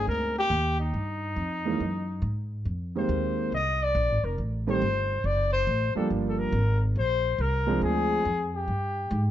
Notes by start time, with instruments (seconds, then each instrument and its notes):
Already playing: grand piano G#3 A#3 C4 D4 D#4
0.07 upright bass D2, trumpet A#4
0.39 trumpet G4
0.50 upright bass D#2
0.80 trumpet D#4
0.94 upright bass G2
1.36 upright bass F2
1.65 grand piano E3 G#3 A#3 C#4 D#4
1.80 upright bass F#2
2.22 upright bass G#2
2.65 upright bass F2
2.95 grand piano D#3 G#3 A#3 C4 G4, trumpet C5
3.09 upright bass D#2
3.52 upright bass C2, trumpet D#5
3.83 trumpet D5
3.95 upright bass A#1
4.09 upright bass G#1
4.24 upright bass F1, trumpet A#4
4.38 upright bass A1
4.67 grand piano D#3 G3 A3 C4 G4, trumpet C5
4.82 upright bass G1
5.24 upright bass F#1, trumpet D5
5.53 trumpet C5
5.67 upright bass A1
5.95 grand piano F3 G3 A#3 D4 G4, trumpet A4, muted upright bass stroke
6.10 upright bass G1
6.29 trumpet A4
6.39 trumpet A#4
6.52 upright bass G#1
6.95 upright bass A#1, trumpet C5
7.38 upright bass C2, trumpet A#4
7.66 grand piano F3 G#3 C4 D4 G#4
7.81 upright bass D2, trumpet G#4
8.25 upright bass F2
8.55 trumpet G4
8.68 upright bass G2
9.11 upright bass G#2